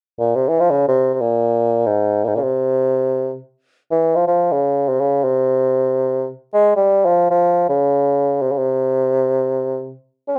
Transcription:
0.19 A#2
0.36 C3
0.49 E3
0.60 F3
0.71 C#3
0.88 C3
1.14 C3
1.21 A#2
1.86 G#2
2.24 G#2 A#2
2.35 A#2 C#3
2.43 C3
3.91 E3
4.15 F3
4.28 F3
4.52 C#3
4.88 C3
5.00 C#3
5.24 C3
6.53 G#3
6.76 G3
7.06 F3
7.31 F3
7.69 C#3
8.42 C3
8.52 C#3
8.58 C3
10.28 C#4
10.36 C4

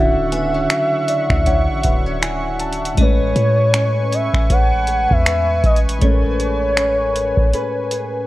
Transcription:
Already playing: D1 D3 F#3 C#4 E4 E5 F#5 C#6
0.00 F#4
0.32 B3 G#5, closed hi-hat
0.54 C#4
0.70 F#3, finger snap, closed hi-hat
1.08 D5, closed hi-hat
1.30 D2 E5, finger snap, kick
1.46 F#3 C#4 E4 F#5, kick, closed hi-hat
1.68 A1 E5
1.84 D1 B3 F#5, kick, closed hi-hat
2.06 C#4
2.22 E4 G#5, finger snap, closed hi-hat
2.60 A5, closed hi-hat, open hi-hat
2.73 closed hi-hat
2.85 closed hi-hat
2.94 A2 G#3 A3 D#5 G#5 C#6, kick, closed hi-hat
2.98 A1 C#4 B4 C#5
3.02 B4
3.36 A2 G#4, closed hi-hat
3.74 C#4, finger snap, closed hi-hat
4.12 E5, closed hi-hat
4.33 A1, finger snap, kick
4.50 A1 C#4 G#4 B4 F#5, kick, closed hi-hat
4.87 G#4, closed hi-hat
5.11 E2 E5, kick
5.26 B4, finger snap, closed hi-hat
5.64 A1 D#5, kick, closed hi-hat
5.76 closed hi-hat
5.89 closed hi-hat
5.98 A1 A2 G#3 A3 C#5, kick, closed hi-hat
6.03 C#4 A#4 C#5
6.13 B4
6.40 G#4, closed hi-hat
6.77 C#4, finger snap, closed hi-hat
7.16 closed hi-hat
7.37 A1, kick
7.54 C#4 G#4 B4, closed hi-hat
7.91 G#4, closed hi-hat

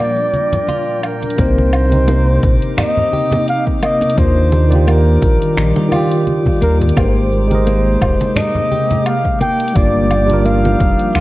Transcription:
Already playing: A#2 F3 G3 D4 F4 A#4 D5 G5
0.00 A#3
0.18 cabasa
0.33 closed hi-hat, high conga, cabasa
0.53 closed hi-hat, muted conga, low conga, cabasa
0.68 F4, closed hi-hat, high conga, cabasa
0.88 cabasa
1.03 A#4, closed hi-hat, cabasa, low woodblock
1.23 closed hi-hat, muted conga, cabasa
1.30 closed hi-hat
1.37 C2 C3 A#3 C4 D#4 G4 A#4 C5 D6, kick, closed hi-hat, cabasa
1.58 muted conga, cabasa
1.73 cabasa, low woodblock
1.89 C3 C4, closed hi-hat, high conga, cabasa
1.94 D#4 C5
2.08 A#3, closed hi-hat, muted conga, cabasa
2.28 cabasa
2.43 A#1, kick, closed hi-hat, cabasa
2.62 closed hi-hat, cabasa
2.77 D#4 D#5, finger snap, closed hi-hat, muted conga, low conga, cabasa, low woodblock
2.97 low conga, cabasa
3.13 G4, high conga, cabasa
3.31 closed hi-hat, muted conga, low conga, cabasa
3.48 F5, closed hi-hat, cabasa
3.67 kick, cabasa
3.83 A#3 D#5, closed hi-hat, cabasa, low woodblock
4.01 closed hi-hat, muted conga, cabasa
4.10 closed hi-hat
4.16 D#2 D#3 G3 A#3 D4 F4 C5 D5, kick, closed hi-hat, cabasa
4.37 cabasa
4.52 muted conga, cabasa
4.68 D#3 D5, closed hi-hat, high conga, cabasa
4.73 F4 G4
4.87 A#3 A#4, closed hi-hat, cabasa, low woodblock
5.07 cabasa
5.22 A#1, kick, closed hi-hat, muted conga, cabasa
5.42 closed hi-hat, cabasa
5.57 A#1 D#4, finger snap, closed hi-hat, cabasa
5.76 muted conga, cabasa
5.89 D#3 F4 D5, high conga, cabasa, low woodblock
5.94 F4 G4
6.12 closed hi-hat, cabasa
6.27 closed hi-hat, high conga, cabasa
6.46 kick, muted conga, high conga, cabasa
6.62 D#2 A#3 A#4, closed hi-hat, cabasa
6.81 closed hi-hat, low conga, cabasa
6.89 closed hi-hat
6.95 G#1 C3 G#3 A#3 G4 A#4 C5, kick, closed hi-hat, muted conga, cabasa, low woodblock
7.16 cabasa
7.32 cabasa
7.47 G#3 G4, closed hi-hat, high conga, cabasa
7.52 A#4 D#5
7.67 A#3, closed hi-hat, muted conga, cabasa
7.86 cabasa
8.01 D#1, kick, closed hi-hat, cabasa, low woodblock
8.21 closed hi-hat, muted conga, cabasa
8.36 D#4 D#5, finger snap, closed hi-hat, low conga, cabasa
8.55 low conga, cabasa
8.71 G4, high conga, cabasa
8.90 closed hi-hat, muted conga, low conga, cabasa
9.06 F5, closed hi-hat, cabasa, low woodblock
9.25 kick, cabasa
9.41 F3 G3 A#3 F4 G5, closed hi-hat, muted conga, cabasa
9.60 closed hi-hat, cabasa
9.68 closed hi-hat
9.74 G1 G3 A#3 D4 F4 D5, kick, closed hi-hat, cabasa
9.95 cabasa
10.11 closed hi-hat, muted conga, cabasa, low woodblock
10.26 G3 D4, closed hi-hat, cabasa
10.31 F4 A#4, high conga
10.45 A#3 F5, closed hi-hat, cabasa
10.65 muted conga, cabasa
10.80 F1, kick, closed hi-hat, cabasa
10.99 closed hi-hat, cabasa
11.15 D2 F4, finger snap, closed hi-hat, cabasa, low woodblock

